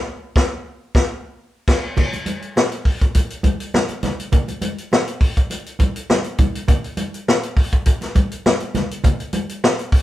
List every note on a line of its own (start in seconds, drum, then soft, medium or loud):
0.36 kick loud
0.36 snare loud
0.95 kick loud
0.95 snare loud
1.68 kick loud
1.68 snare loud
1.68 crash medium
1.97 kick loud
1.97 crash medium
1.97 muted conga soft
1.97 low conga medium
2.13 closed hi-hat soft
2.13 muted conga soft
2.26 closed hi-hat medium
2.26 high conga medium
2.42 closed hi-hat soft
2.56 snare loud
2.56 muted conga soft
2.72 closed hi-hat soft
2.85 kick loud
2.85 open hi-hat medium
3.01 kick medium
3.01 closed hi-hat soft
3.15 kick medium
3.15 closed hi-hat loud
3.15 muted conga soft
3.30 closed hi-hat medium
3.43 kick medium
3.43 closed hi-hat medium
3.43 high conga medium
3.60 closed hi-hat medium
3.74 snare loud
3.74 muted conga soft
3.74 high conga medium
3.88 closed hi-hat soft
3.88 muted conga soft
4.03 snare soft
4.03 closed hi-hat medium
4.03 high conga medium
4.03 low conga medium
4.20 closed hi-hat medium
4.32 kick loud
4.32 closed hi-hat medium
4.32 muted conga soft
4.32 low conga medium
4.48 closed hi-hat soft
4.48 muted conga soft
4.62 closed hi-hat medium
4.62 high conga medium
4.78 closed hi-hat soft
4.92 snare loud
4.92 muted conga soft
5.08 closed hi-hat medium
5.21 kick loud
5.21 open hi-hat medium
5.37 kick medium
5.37 closed hi-hat medium
5.50 closed hi-hat loud
5.50 muted conga soft
5.66 closed hi-hat medium
5.79 kick loud
5.79 closed hi-hat medium
5.79 high conga medium
5.96 closed hi-hat medium
6.10 snare loud
6.10 muted conga soft
6.10 high conga medium
6.24 closed hi-hat soft
6.38 kick loud
6.38 closed hi-hat medium
6.38 high conga medium
6.38 low conga medium
6.55 closed hi-hat medium
6.68 kick loud
6.68 closed hi-hat medium
6.68 low conga medium
6.84 closed hi-hat soft
6.97 closed hi-hat medium
6.97 high conga medium
7.14 closed hi-hat medium
7.28 snare loud
7.43 closed hi-hat soft
7.57 kick loud
7.57 open hi-hat medium
7.72 kick medium
7.72 closed hi-hat medium
7.86 kick loud
7.86 closed hi-hat loud
7.86 muted conga soft
8.01 snare soft
8.01 closed hi-hat medium
8.01 muted conga soft
8.15 kick loud
8.15 closed hi-hat medium
8.15 high conga medium
8.31 closed hi-hat medium
8.46 snare loud
8.46 muted conga soft
8.46 high conga medium
8.60 closed hi-hat soft
8.75 snare soft
8.75 closed hi-hat medium
8.75 high conga medium
8.75 low conga medium
8.91 closed hi-hat medium
9.04 kick loud
9.04 closed hi-hat medium
9.04 muted conga soft
9.04 low conga medium
9.20 closed hi-hat soft
9.33 closed hi-hat medium
9.33 high conga medium
9.49 closed hi-hat medium
9.64 snare loud
9.79 closed hi-hat soft
9.92 kick loud
9.92 open hi-hat medium